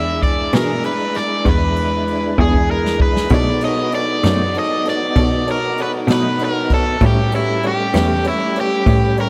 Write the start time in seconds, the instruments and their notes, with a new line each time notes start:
Already playing: cello E2, tonewheel organ G#3 D4 E4, overdriven electric guitar E5
0.22 overdriven electric guitar D5, kick, ride
0.53 cello B2, clean electric guitar E3 B3 D4 G#4, overdriven electric guitar A#4, snare, ride
0.84 overdriven electric guitar B4, ride
1.14 overdriven electric guitar D5, snare, ride
1.45 cello E2, overdriven electric guitar B4, kick, ride
1.76 ride
2.08 ride
2.38 cello E2, clean electric guitar E3 B3 D4 G#4, overdriven electric guitar G#4, kick
2.54 kick
2.71 overdriven electric guitar A#4
2.86 snare
3.00 overdriven electric guitar B4, kick
3.17 snare
3.29 cello B2, clean electric guitar B2 F#3 A3 D#4, tonewheel organ B3 D#4 F#4, upright piano D#4 A4, kick, ride
3.34 upright piano C#5, overdriven electric guitar D5
3.61 upright piano D#4 A4, ride
3.65 upright piano C#5, overdriven electric guitar D#5
3.92 upright piano D#4 A4 C#5, overdriven electric guitar D5, ride
4.23 cello F#2, clean electric guitar B2 F#3 A3 D#4, upright piano D#4 A4 C#5, snare, ride
4.55 upright piano D#4 A4 C#5, ride
4.59 overdriven electric guitar D#5
4.85 upright piano D#4 A4 C#5, snare, ride
4.90 overdriven electric guitar D5
5.16 cello B2, upright piano D#4 A4 C#5, kick, ride
5.47 upright piano D#4 A4 C#5, ride
5.51 overdriven electric guitar A#4
5.78 upright piano D#4 A4 C#5, ride
5.82 overdriven electric guitar B4
6.07 cello B2, clean electric guitar B2 F#3 A3 D#4, upright piano D#4 A4 C#5, snare, ride
6.12 overdriven electric guitar B4
6.39 upright piano D#4 A4 C#5, ride
6.45 overdriven electric guitar A#4
6.70 upright piano D#4 A4 C#5, kick, ride
6.74 overdriven electric guitar A4
7.01 cello A2, clean electric guitar A2 G3 C#4 E4, tonewheel organ G3 A3 C#4, upright piano G4 B4 C#5, kick, ride
7.07 overdriven electric guitar G4
7.32 upright piano G4 B4 C#5, ride
7.36 overdriven electric guitar E4
7.63 upright piano G4 B4 C#5, ride
7.67 overdriven electric guitar G4
7.93 cello E2, clean electric guitar A2 G3 C#4 E4, upright piano G4 B4 C#5, snare, ride
8.24 upright piano G4 B4 C#5, ride
8.28 overdriven electric guitar E4
8.56 upright piano G4 B4 C#5, ride
8.61 overdriven electric guitar G4
8.86 cello A2, upright piano G4 B4 C#5, kick, ride
9.16 upright piano G4 B4 C#5, ride
9.21 overdriven electric guitar A#4